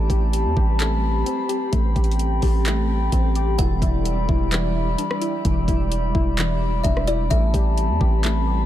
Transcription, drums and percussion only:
0, 0, Header, 1, 2, 480
1, 0, Start_track
1, 0, Key_signature, 1, "minor"
1, 0, Tempo, 465116
1, 1783, Time_signature, 4, 2, 24, 8
1, 8935, End_track
2, 0, Start_track
2, 0, Title_t, "Drums"
2, 101, Note_on_c, 9, 36, 88
2, 104, Note_on_c, 9, 42, 63
2, 204, Note_off_c, 9, 36, 0
2, 208, Note_off_c, 9, 42, 0
2, 345, Note_on_c, 9, 42, 71
2, 448, Note_off_c, 9, 42, 0
2, 585, Note_on_c, 9, 36, 92
2, 688, Note_off_c, 9, 36, 0
2, 822, Note_on_c, 9, 42, 78
2, 830, Note_on_c, 9, 39, 118
2, 926, Note_off_c, 9, 42, 0
2, 934, Note_off_c, 9, 39, 0
2, 1304, Note_on_c, 9, 42, 72
2, 1407, Note_off_c, 9, 42, 0
2, 1541, Note_on_c, 9, 42, 62
2, 1644, Note_off_c, 9, 42, 0
2, 1782, Note_on_c, 9, 42, 73
2, 1783, Note_on_c, 9, 36, 106
2, 1885, Note_off_c, 9, 42, 0
2, 1886, Note_off_c, 9, 36, 0
2, 2021, Note_on_c, 9, 36, 88
2, 2023, Note_on_c, 9, 42, 40
2, 2104, Note_off_c, 9, 42, 0
2, 2104, Note_on_c, 9, 42, 53
2, 2124, Note_off_c, 9, 36, 0
2, 2183, Note_off_c, 9, 42, 0
2, 2183, Note_on_c, 9, 42, 68
2, 2264, Note_off_c, 9, 42, 0
2, 2264, Note_on_c, 9, 42, 73
2, 2367, Note_off_c, 9, 42, 0
2, 2500, Note_on_c, 9, 46, 57
2, 2505, Note_on_c, 9, 36, 92
2, 2603, Note_off_c, 9, 46, 0
2, 2608, Note_off_c, 9, 36, 0
2, 2741, Note_on_c, 9, 42, 77
2, 2749, Note_on_c, 9, 39, 119
2, 2844, Note_off_c, 9, 42, 0
2, 2852, Note_off_c, 9, 39, 0
2, 3223, Note_on_c, 9, 42, 72
2, 3224, Note_on_c, 9, 36, 84
2, 3326, Note_off_c, 9, 42, 0
2, 3327, Note_off_c, 9, 36, 0
2, 3462, Note_on_c, 9, 42, 62
2, 3565, Note_off_c, 9, 42, 0
2, 3703, Note_on_c, 9, 42, 76
2, 3704, Note_on_c, 9, 36, 114
2, 3806, Note_off_c, 9, 42, 0
2, 3807, Note_off_c, 9, 36, 0
2, 3941, Note_on_c, 9, 36, 95
2, 3945, Note_on_c, 9, 42, 66
2, 4044, Note_off_c, 9, 36, 0
2, 4049, Note_off_c, 9, 42, 0
2, 4184, Note_on_c, 9, 42, 74
2, 4287, Note_off_c, 9, 42, 0
2, 4426, Note_on_c, 9, 36, 95
2, 4529, Note_off_c, 9, 36, 0
2, 4663, Note_on_c, 9, 42, 79
2, 4671, Note_on_c, 9, 39, 126
2, 4766, Note_off_c, 9, 42, 0
2, 4774, Note_off_c, 9, 39, 0
2, 5144, Note_on_c, 9, 42, 70
2, 5248, Note_off_c, 9, 42, 0
2, 5271, Note_on_c, 9, 37, 99
2, 5374, Note_off_c, 9, 37, 0
2, 5382, Note_on_c, 9, 42, 67
2, 5486, Note_off_c, 9, 42, 0
2, 5624, Note_on_c, 9, 36, 108
2, 5624, Note_on_c, 9, 42, 77
2, 5727, Note_off_c, 9, 42, 0
2, 5728, Note_off_c, 9, 36, 0
2, 5862, Note_on_c, 9, 36, 88
2, 5866, Note_on_c, 9, 42, 63
2, 5965, Note_off_c, 9, 36, 0
2, 5969, Note_off_c, 9, 42, 0
2, 6105, Note_on_c, 9, 42, 70
2, 6209, Note_off_c, 9, 42, 0
2, 6346, Note_on_c, 9, 36, 98
2, 6449, Note_off_c, 9, 36, 0
2, 6582, Note_on_c, 9, 42, 79
2, 6590, Note_on_c, 9, 39, 118
2, 6686, Note_off_c, 9, 42, 0
2, 6694, Note_off_c, 9, 39, 0
2, 7064, Note_on_c, 9, 36, 89
2, 7064, Note_on_c, 9, 42, 75
2, 7167, Note_off_c, 9, 36, 0
2, 7167, Note_off_c, 9, 42, 0
2, 7191, Note_on_c, 9, 37, 95
2, 7294, Note_off_c, 9, 37, 0
2, 7301, Note_on_c, 9, 42, 64
2, 7404, Note_off_c, 9, 42, 0
2, 7542, Note_on_c, 9, 42, 76
2, 7543, Note_on_c, 9, 36, 110
2, 7645, Note_off_c, 9, 42, 0
2, 7646, Note_off_c, 9, 36, 0
2, 7781, Note_on_c, 9, 36, 93
2, 7785, Note_on_c, 9, 42, 65
2, 7884, Note_off_c, 9, 36, 0
2, 7888, Note_off_c, 9, 42, 0
2, 8024, Note_on_c, 9, 42, 69
2, 8127, Note_off_c, 9, 42, 0
2, 8264, Note_on_c, 9, 36, 98
2, 8368, Note_off_c, 9, 36, 0
2, 8501, Note_on_c, 9, 42, 81
2, 8509, Note_on_c, 9, 39, 125
2, 8604, Note_off_c, 9, 42, 0
2, 8612, Note_off_c, 9, 39, 0
2, 8935, End_track
0, 0, End_of_file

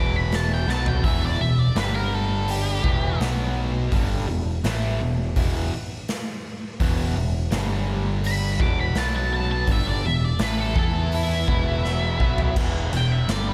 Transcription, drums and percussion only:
0, 0, Header, 1, 2, 480
1, 0, Start_track
1, 0, Key_signature, 1, "minor"
1, 0, Tempo, 721154
1, 693, Time_signature, 4, 2, 24, 8
1, 9010, End_track
2, 0, Start_track
2, 0, Title_t, "Drums"
2, 213, Note_on_c, 9, 46, 49
2, 217, Note_on_c, 9, 38, 93
2, 279, Note_off_c, 9, 46, 0
2, 284, Note_off_c, 9, 38, 0
2, 460, Note_on_c, 9, 38, 53
2, 526, Note_off_c, 9, 38, 0
2, 574, Note_on_c, 9, 43, 78
2, 640, Note_off_c, 9, 43, 0
2, 691, Note_on_c, 9, 36, 97
2, 691, Note_on_c, 9, 46, 52
2, 758, Note_off_c, 9, 36, 0
2, 758, Note_off_c, 9, 46, 0
2, 1170, Note_on_c, 9, 46, 55
2, 1175, Note_on_c, 9, 38, 104
2, 1237, Note_off_c, 9, 46, 0
2, 1242, Note_off_c, 9, 38, 0
2, 1650, Note_on_c, 9, 46, 48
2, 1717, Note_off_c, 9, 46, 0
2, 1890, Note_on_c, 9, 36, 98
2, 1957, Note_off_c, 9, 36, 0
2, 2133, Note_on_c, 9, 46, 46
2, 2138, Note_on_c, 9, 38, 84
2, 2199, Note_off_c, 9, 46, 0
2, 2204, Note_off_c, 9, 38, 0
2, 2608, Note_on_c, 9, 46, 47
2, 2609, Note_on_c, 9, 36, 92
2, 2674, Note_off_c, 9, 46, 0
2, 2676, Note_off_c, 9, 36, 0
2, 3090, Note_on_c, 9, 46, 57
2, 3094, Note_on_c, 9, 38, 114
2, 3156, Note_off_c, 9, 46, 0
2, 3161, Note_off_c, 9, 38, 0
2, 3568, Note_on_c, 9, 46, 58
2, 3569, Note_on_c, 9, 36, 91
2, 3634, Note_off_c, 9, 46, 0
2, 3636, Note_off_c, 9, 36, 0
2, 4049, Note_on_c, 9, 46, 44
2, 4054, Note_on_c, 9, 38, 82
2, 4116, Note_off_c, 9, 46, 0
2, 4120, Note_off_c, 9, 38, 0
2, 4526, Note_on_c, 9, 46, 52
2, 4527, Note_on_c, 9, 36, 89
2, 4593, Note_off_c, 9, 46, 0
2, 4594, Note_off_c, 9, 36, 0
2, 5002, Note_on_c, 9, 46, 54
2, 5007, Note_on_c, 9, 38, 121
2, 5068, Note_off_c, 9, 46, 0
2, 5073, Note_off_c, 9, 38, 0
2, 5484, Note_on_c, 9, 46, 46
2, 5550, Note_off_c, 9, 46, 0
2, 5723, Note_on_c, 9, 36, 107
2, 5789, Note_off_c, 9, 36, 0
2, 5957, Note_on_c, 9, 46, 44
2, 5961, Note_on_c, 9, 38, 92
2, 6023, Note_off_c, 9, 46, 0
2, 6028, Note_off_c, 9, 38, 0
2, 6437, Note_on_c, 9, 46, 50
2, 6440, Note_on_c, 9, 36, 94
2, 6503, Note_off_c, 9, 46, 0
2, 6506, Note_off_c, 9, 36, 0
2, 6915, Note_on_c, 9, 46, 59
2, 6920, Note_on_c, 9, 38, 113
2, 6982, Note_off_c, 9, 46, 0
2, 6987, Note_off_c, 9, 38, 0
2, 7160, Note_on_c, 9, 36, 99
2, 7226, Note_off_c, 9, 36, 0
2, 7400, Note_on_c, 9, 46, 49
2, 7467, Note_off_c, 9, 46, 0
2, 7641, Note_on_c, 9, 36, 93
2, 7708, Note_off_c, 9, 36, 0
2, 7885, Note_on_c, 9, 38, 46
2, 7952, Note_off_c, 9, 38, 0
2, 8121, Note_on_c, 9, 36, 82
2, 8188, Note_off_c, 9, 36, 0
2, 8242, Note_on_c, 9, 43, 73
2, 8308, Note_off_c, 9, 43, 0
2, 8362, Note_on_c, 9, 36, 93
2, 8362, Note_on_c, 9, 49, 94
2, 8428, Note_off_c, 9, 36, 0
2, 8428, Note_off_c, 9, 49, 0
2, 8604, Note_on_c, 9, 51, 70
2, 8671, Note_off_c, 9, 51, 0
2, 8843, Note_on_c, 9, 51, 85
2, 8848, Note_on_c, 9, 38, 110
2, 8910, Note_off_c, 9, 51, 0
2, 8914, Note_off_c, 9, 38, 0
2, 9010, End_track
0, 0, End_of_file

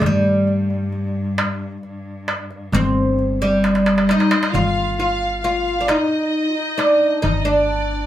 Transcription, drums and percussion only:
0, 0, Header, 1, 2, 480
1, 0, Start_track
1, 0, Tempo, 900901
1, 15, Time_signature, 10, 3, 24, 8
1, 4296, End_track
2, 0, Start_track
2, 0, Title_t, "Darbuka"
2, 9, Note_on_c, 9, 64, 94
2, 62, Note_off_c, 9, 64, 0
2, 252, Note_on_c, 9, 62, 31
2, 306, Note_off_c, 9, 62, 0
2, 374, Note_on_c, 9, 62, 32
2, 428, Note_off_c, 9, 62, 0
2, 493, Note_on_c, 9, 62, 31
2, 546, Note_off_c, 9, 62, 0
2, 736, Note_on_c, 9, 63, 82
2, 789, Note_off_c, 9, 63, 0
2, 976, Note_on_c, 9, 62, 26
2, 1029, Note_off_c, 9, 62, 0
2, 1215, Note_on_c, 9, 63, 72
2, 1268, Note_off_c, 9, 63, 0
2, 1335, Note_on_c, 9, 62, 32
2, 1388, Note_off_c, 9, 62, 0
2, 1456, Note_on_c, 9, 64, 91
2, 1510, Note_off_c, 9, 64, 0
2, 1698, Note_on_c, 9, 62, 30
2, 1751, Note_off_c, 9, 62, 0
2, 1939, Note_on_c, 9, 63, 65
2, 1993, Note_off_c, 9, 63, 0
2, 1999, Note_on_c, 9, 62, 69
2, 2052, Note_off_c, 9, 62, 0
2, 2058, Note_on_c, 9, 63, 68
2, 2112, Note_off_c, 9, 63, 0
2, 2120, Note_on_c, 9, 62, 81
2, 2173, Note_off_c, 9, 62, 0
2, 2179, Note_on_c, 9, 63, 70
2, 2232, Note_off_c, 9, 63, 0
2, 2239, Note_on_c, 9, 62, 79
2, 2292, Note_off_c, 9, 62, 0
2, 2297, Note_on_c, 9, 63, 90
2, 2350, Note_off_c, 9, 63, 0
2, 2359, Note_on_c, 9, 62, 100
2, 2412, Note_off_c, 9, 62, 0
2, 2419, Note_on_c, 9, 64, 89
2, 2473, Note_off_c, 9, 64, 0
2, 3135, Note_on_c, 9, 63, 82
2, 3188, Note_off_c, 9, 63, 0
2, 3617, Note_on_c, 9, 63, 69
2, 3671, Note_off_c, 9, 63, 0
2, 3738, Note_on_c, 9, 62, 28
2, 3791, Note_off_c, 9, 62, 0
2, 3856, Note_on_c, 9, 64, 76
2, 3909, Note_off_c, 9, 64, 0
2, 4296, End_track
0, 0, End_of_file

